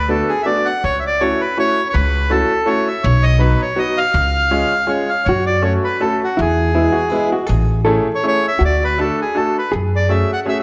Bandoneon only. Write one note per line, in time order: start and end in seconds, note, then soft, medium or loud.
0.10 0.30 A4 medium
0.29 0.42 G#4 medium
0.42 0.67 D5 medium
0.42 0.46 E5 medium
0.65 0.83 F#5 medium
0.84 0.99 C#5 loud
1.00 1.04 E5 medium
1.07 1.22 D5 medium
1.20 1.41 C#5 medium
1.41 1.58 B4 medium
1.59 1.88 C#5 loud
1.89 2.32 B4 medium
1.89 1.95 C#5 medium
2.31 2.69 A4 medium
2.67 2.88 C#5 medium
2.88 3.05 E5 medium
3.03 3.25 C#5 medium
3.23 3.41 D#5 loud
3.40 3.61 B4 medium
3.62 3.79 C#5 medium
3.78 3.99 D#5 medium
3.98 4.92 F5 loud
4.89 5.10 C#5 medium
5.09 5.27 F5 medium
5.25 5.45 C#5 medium
5.46 5.64 D5 medium
5.64 5.73 C#5 medium
5.84 6.02 B4 medium
6.01 6.20 A4 medium
6.24 6.40 F#4 medium
6.41 7.30 G#4 medium
8.15 8.26 C#5 medium
8.27 8.46 C#5 loud
8.48 8.63 E5 medium
8.65 8.84 D5 medium
8.84 9.00 B4 medium
9.00 9.20 A4 medium
9.21 9.37 G#4 medium
9.37 9.57 A4 medium
9.58 9.73 B4 medium
9.96 10.12 D5 loud
10.10 10.31 E5 medium
10.33 10.40 F#5 medium
10.49 10.58 E5 loud
10.60 10.63 E5 medium